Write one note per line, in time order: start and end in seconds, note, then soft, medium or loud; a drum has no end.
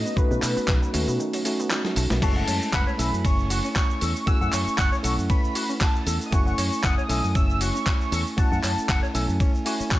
0.00 0.14 A3 loud
0.00 0.14 C#4 medium
0.00 0.15 D#4 medium
0.00 0.15 F#4 loud
0.00 0.18 D#5 loud
0.05 0.11 B3 medium
0.05 shaker soft
0.16 0.28 D#3 medium
0.16 0.91 A3 medium
0.16 0.91 C#4 medium
0.16 0.91 D#4 medium
0.16 0.92 F#4 loud
0.16 1.19 B4 loud
0.16 muted fingered electric bass stroke soft
0.16 kick loud
0.16 shaker soft
0.31 0.40 B2 loud
0.31 0.35 F#3 medium
0.31 shaker soft
0.42 0.54 B2 medium
0.42 0.50 A3 medium
0.42 clap medium
0.42 open hi-hat loud
0.42 shaker medium
0.56 0.63 B3 medium
0.56 muted fingered electric bass stroke soft
0.56 shaker soft
0.68 0.79 B1 loud
0.68 0.73 D#3 medium
0.68 kick loud
0.68 clap loud
0.68 shaker soft
0.82 0.89 F#3 medium
0.82 shaker soft
0.93 1.05 D#2 loud
0.93 1.43 A3 loud
0.93 1.01 A3 loud
0.93 1.43 C#4 medium
0.93 1.43 D#4 medium
0.93 1.43 F#4 loud
0.93 open hi-hat loud
0.93 shaker medium
1.08 1.17 B2 medium
1.08 1.14 B3 medium
1.08 shaker soft
1.20 1.31 D#3 medium
1.20 shaker soft
1.33 1.37 F#3 medium
1.33 open hi-hat medium
1.33 shaker soft
1.45 2.19 A3 medium
1.45 1.53 A3 medium
1.45 2.19 C#4 medium
1.45 2.20 D#4 medium
1.45 2.20 F#4 loud
1.45 open hi-hat loud
1.45 shaker medium
1.59 1.66 B3 medium
1.59 shaker soft
1.71 1.75 D#3 medium
1.71 snare medium
1.71 clap loud
1.71 shaker soft
1.85 1.91 F#3 medium
1.85 snare medium
1.85 shaker soft
1.96 2.07 B1 loud
1.96 2.04 A3 loud
1.96 open hi-hat loud
1.96 shaker medium
2.10 2.20 B1 medium
2.10 2.17 B3 medium
2.10 snare medium
2.10 shaker soft
2.21 2.97 G#3 loud
2.21 2.96 A3 loud
2.21 2.96 C#4 medium
2.21 2.96 E4 medium
2.21 2.33 F#4 medium
2.21 2.70 A5 loud
2.21 kick loud
2.21 crash loud
2.21 ride medium
2.21 shaker soft
2.36 2.42 F#5 medium
2.36 shaker soft
2.48 2.59 F#2 medium
2.48 2.55 C#5 medium
2.48 open hi-hat loud
2.48 shaker medium
2.62 shaker soft
2.73 2.84 F#1 loud
2.73 2.84 F#5 loud
2.73 3.26 B5 loud
2.73 kick loud
2.73 clap loud
2.73 ride medium
2.73 shaker soft
2.87 2.91 C#5 loud
2.87 shaker soft
2.98 3.10 B1 loud
2.98 4.24 A3 medium
2.98 4.24 C#4 medium
2.98 4.25 E4 medium
2.98 3.10 A4 medium
2.98 4.25 G#5 loud
2.98 open hi-hat medium
2.98 shaker medium
3.13 3.22 F#2 medium
3.13 shaker soft
3.25 3.59 F#1 medium
3.25 3.35 C#4 medium
3.25 3.76 C#6 loud
3.25 kick loud
3.25 ride medium
3.25 shaker soft
3.39 shaker soft
3.50 3.58 F#4 loud
3.50 open hi-hat loud
3.50 shaker medium
3.65 3.68 C#4 loud
3.65 shaker soft
3.76 3.80 F#4 medium
3.76 4.24 C#6 loud
3.76 kick loud
3.76 clap loud
3.76 ride medium
3.76 shaker soft
3.90 shaker soft
4.01 4.13 E2 medium
4.01 4.12 A4 medium
4.01 open hi-hat medium
4.01 shaker medium
4.16 shaker soft
4.26 5.01 A3 loud
4.26 5.01 C#4 medium
4.26 5.02 E4 medium
4.26 4.38 F#4 medium
4.26 5.02 G#5 loud
4.26 4.51 E6 loud
4.26 muted fingered electric bass stroke soft
4.26 kick loud
4.26 ride medium
4.26 shaker soft
4.41 4.50 F#2 loud
4.41 4.47 F#5 medium
4.41 shaker soft
4.53 4.64 F#2 medium
4.53 4.60 C#5 medium
4.53 5.01 C#6 loud
4.53 clap medium
4.53 open hi-hat loud
4.53 shaker medium
4.67 muted fingered electric bass stroke soft
4.67 shaker soft
4.78 4.89 F#1 medium
4.78 4.89 F#5 loud
4.78 kick loud
4.78 clap loud
4.78 ride medium
4.78 shaker soft
4.92 4.96 C#5 loud
4.92 shaker soft
5.03 5.15 B1 loud
5.03 6.29 A3 loud
5.03 6.29 C#4 medium
5.03 6.30 E4 medium
5.03 5.15 A4 medium
5.03 6.30 F#5 loud
5.03 5.16 C#6 loud
5.03 open hi-hat loud
5.03 shaker medium
5.18 5.27 F#2 medium
5.18 shaker soft
5.29 5.40 C#4 medium
5.29 5.78 B5 loud
5.29 kick loud
5.29 ride medium
5.29 shaker soft
5.44 shaker soft
5.55 5.62 F#4 loud
5.55 open hi-hat loud
5.55 shaker medium
5.69 5.73 C#4 loud
5.69 shaker soft
5.81 5.85 F#4 medium
5.81 6.18 A5 loud
5.81 kick loud
5.81 clap loud
5.81 ride medium
5.81 shaker soft
5.96 shaker soft
6.07 6.17 E2 medium
6.07 6.17 A4 medium
6.07 open hi-hat loud
6.07 shaker medium
6.21 shaker soft
6.26 6.33 D#6 medium
6.31 6.53 F#1 loud
6.31 7.06 A3 loud
6.31 7.06 C#4 medium
6.31 7.07 E4 loud
6.31 6.43 F#4 medium
6.31 7.07 G#5 loud
6.31 6.84 C#6 loud
6.31 kick loud
6.31 ride medium
6.31 shaker soft
6.46 6.52 F#5 medium
6.46 shaker soft
6.58 6.69 F#2 medium
6.58 6.65 C#5 medium
6.58 open hi-hat loud
6.58 shaker medium
6.73 shaker soft
6.83 6.95 F#1 loud
6.83 6.94 F#5 loud
6.83 7.36 D#6 loud
6.83 kick loud
6.83 clap loud
6.83 ride medium
6.83 shaker soft
6.98 7.01 C#5 loud
6.98 shaker soft
7.09 7.20 B1 loud
7.09 8.34 A3 loud
7.09 8.35 C#4 medium
7.09 8.35 E4 medium
7.09 7.20 A4 medium
7.09 8.35 G#5 loud
7.09 open hi-hat loud
7.09 shaker medium
7.24 7.33 F#2 medium
7.24 shaker soft
7.35 7.70 F#1 medium
7.35 7.46 C#4 medium
7.35 7.63 E6 loud
7.35 kick loud
7.35 ride medium
7.35 shaker soft
7.50 shaker soft
7.61 7.68 F#4 loud
7.61 8.11 C#6 loud
7.61 open hi-hat loud
7.61 shaker medium
7.75 7.78 C#4 loud
7.75 shaker soft
7.87 7.91 F#4 medium
7.87 kick loud
7.87 clap loud
7.87 ride medium
7.87 shaker soft
8.01 shaker soft
8.12 8.23 E2 loud
8.12 8.23 A4 medium
8.12 8.24 C#6 medium
8.12 open hi-hat loud
8.12 shaker medium
8.27 shaker soft
8.36 9.11 A3 medium
8.36 9.12 C#4 medium
8.36 9.12 E4 medium
8.36 8.48 F#4 medium
8.36 9.12 F#5 loud
8.36 9.37 A5 medium
8.36 muted fingered electric bass stroke soft
8.36 kick loud
8.36 ride medium
8.36 shaker soft
8.52 8.61 F#2 loud
8.52 8.58 F#5 medium
8.52 shaker soft
8.63 8.74 F#2 medium
8.63 8.70 C#5 medium
8.63 clap medium
8.63 open hi-hat loud
8.63 shaker medium
8.78 muted fingered electric bass stroke soft
8.78 shaker soft
8.89 9.00 F#1 medium
8.89 9.00 F#5 loud
8.89 kick loud
8.89 clap loud
8.89 ride medium
8.89 shaker soft
9.03 9.06 C#5 loud
9.03 shaker soft
9.14 9.26 B1 loud
9.14 9.63 A3 loud
9.14 9.63 C#4 medium
9.14 9.64 E4 medium
9.14 9.25 A4 medium
9.14 9.64 G#5 loud
9.14 open hi-hat loud
9.14 shaker medium
9.29 9.38 F#2 medium
9.29 shaker soft
9.40 9.51 C#4 medium
9.40 kick loud
9.40 ride medium
9.40 shaker soft
9.55 shaker soft
9.65 9.99 A3 medium
9.65 9.99 C#4 medium
9.65 9.99 E4 medium
9.65 9.73 F#4 loud
9.65 9.99 G#5 loud
9.65 open hi-hat loud
9.65 shaker medium
9.80 9.83 C#4 loud
9.80 muted fingered electric bass stroke soft
9.80 shaker soft
9.91 9.99 A1 loud
9.91 9.96 F#4 medium
9.91 9.99 C#6 medium
9.91 kick loud
9.91 clap loud
9.91 ride medium
9.91 shaker soft